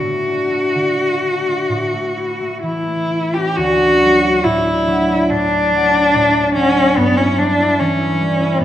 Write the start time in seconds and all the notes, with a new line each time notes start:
Already playing: A2 D4 F#4
0.04 A3
0.27 D4
0.51 A3
0.75 D3
0.98 A3
1.22 D4
1.46 A3
1.69 A2
1.93 A3
2.17 E4
2.40 A3
2.63 E3 E4
2.86 A3
3.11 E4
3.34 C#4 G4
3.56 D2 F#4
3.80 D4
4.02 F#3
4.23 D4
4.44 A2 E4
4.67 D4
4.88 F#3
5.09 D4
5.30 A2 D4
5.51 D4
5.73 F#3
5.93 D4
6.15 A2
6.35 D4
6.55 F#3 C#4
6.76 D4
6.97 G2 B3
7.17 C#4 E4
7.38 G3 D4
7.60 E4
7.80 E3 C#4
8.00 E4
8.20 G3
8.40 E4
8.59 G2 B3